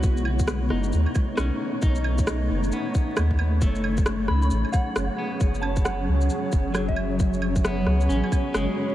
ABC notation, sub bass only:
X:1
M:4/4
L:1/16
Q:"Swing 16ths" 1/4=134
K:F#dor
V:1 name="Sub bass" clef=bass
B,,,6 F,,,2 D,, z3 B,,, z3 | B,,,6 F,,,2 z4 D,,4 | F,,,6 C,,2 A,,,2 z2 F,,,2 z2 | F,,,6 C,,2 z2 F,,,6 |
F,,,6 C,,2 A,,,2 z2 F,,,2 z2 |]